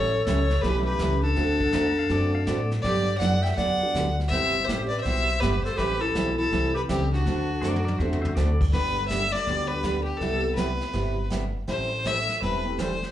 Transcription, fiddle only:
0.00 0.25 C#5 loud
0.26 0.63 C#5 medium
0.61 0.84 B4 medium
0.85 1.20 B4 medium
1.23 2.67 A4 loud
2.82 3.17 D5 loud
3.18 3.44 F#5 loud
3.43 3.55 G5 loud
3.55 4.13 F#5 loud
4.28 4.66 E5 loud
4.64 4.88 C5 loud
4.89 5.00 D5 medium
5.00 5.42 E5 loud
5.40 5.63 B4 loud
5.64 5.79 C5 medium
5.77 6.03 B4 loud
6.01 6.37 A4 loud
6.38 6.73 A4 medium
6.76 6.82 B4 medium
6.90 7.12 G4 medium
7.13 8.32 F#4 medium
8.72 9.07 B4 loud
9.08 9.33 E5 loud
9.32 9.69 D5 loud
9.67 10.03 B4 loud
10.04 10.18 G4 medium
10.17 10.54 A4 loud
10.55 11.26 B4 medium
11.68 12.08 C5 loud
12.07 12.42 E5 loud
12.42 12.76 B4 medium
12.80 13.11 C5 loud

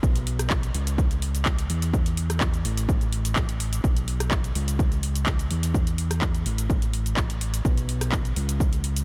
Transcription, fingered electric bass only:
0.03 0.72 B1 medium
0.74 1.67 C#2 medium
1.70 2.63 E2 medium
2.65 3.82 A1 medium
3.84 4.53 B1 medium
4.55 5.48 C#2 medium
5.51 6.44 E2 medium
6.46 7.63 A1 medium
7.65 8.34 B1 medium
8.36 9.04 C#2 loud

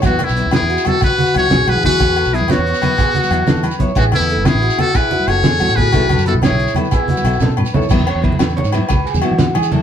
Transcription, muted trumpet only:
0.06 0.26 F#4 medium
0.24 0.54 E4 medium
0.54 0.89 G#4 medium
0.88 1.03 A4 medium
1.04 1.33 B4 loud
1.37 1.71 C#5 loud
1.69 1.84 B4 loud
1.85 2.36 B4 loud
2.35 2.52 G#4 medium
2.51 3.81 F#4 medium
3.97 4.04 F#4 medium
4.14 4.48 E4 loud
4.46 4.81 G#4 medium
4.80 4.97 A4 loud
4.96 5.29 B4 medium
5.28 5.78 C#5 loud
5.76 6.26 B4 medium
6.27 6.34 A4 medium
6.43 6.74 G#4 medium
6.93 7.54 E4 medium

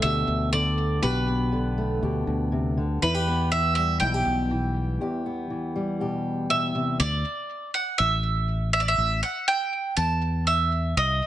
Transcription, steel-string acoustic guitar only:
0.00 0.52 B2 medium
0.00 0.52 D3 medium
0.00 1.00 A3 medium
0.00 1.28 B3 soft
0.00 1.02 G4 medium
0.53 1.51 D3 medium
1.02 1.52 B2 medium
1.02 2.03 G4 medium
1.28 3.27 B3 soft
1.52 2.76 D3 medium
1.78 2.99 A3 medium
2.02 2.51 B2 medium
2.02 3.02 G4 medium
2.52 2.77 C3 medium
2.77 3.02 D3 medium
3.02 5.00 E2 medium
3.02 3.15 E4 medium
3.14 4.02 G4 medium
3.28 5.25 B3 soft
3.52 4.50 E3 medium
3.77 5.74 G3 medium
4.02 4.52 B2 medium
4.02 4.14 E4 medium
4.14 5.00 G4 medium
4.50 5.50 E3 medium
5.01 7.00 E2 medium
5.01 6.00 G4 medium
5.26 7.00 B3 soft
5.50 6.96 E3 medium
5.76 7.00 G3 soft
6.00 6.49 B2 medium
6.00 6.97 G4 medium
6.50 6.74 B2 medium
6.75 7.00 C3 medium

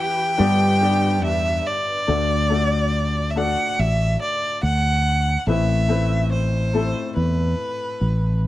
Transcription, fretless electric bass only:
0.39 1.24 G2 medium
1.24 1.60 E2 medium
2.08 3.55 D2 medium
3.79 4.15 A1 medium
4.63 5.36 D2 medium
5.46 6.93 A1 medium
7.16 7.53 E2 medium
8.01 8.47 A1 medium

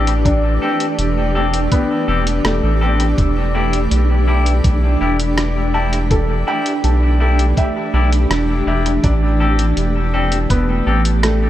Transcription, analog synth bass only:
0.00 0.59 A1 medium
0.99 1.68 E1 medium
2.08 2.41 E1 medium
2.45 2.61 E1 medium
2.63 3.15 A1 medium
3.18 3.88 E1 medium
3.91 4.61 B1 medium
4.64 4.97 B1 medium
5.01 6.44 E1 medium
6.84 7.54 B1 medium
7.94 8.26 B1 loud
8.30 8.63 E1 medium
8.67 8.99 E1 loud
9.04 9.73 A1 loud
9.77 10.47 E1 medium
10.50 10.82 E1 medium
10.87 11.50 A1 medium

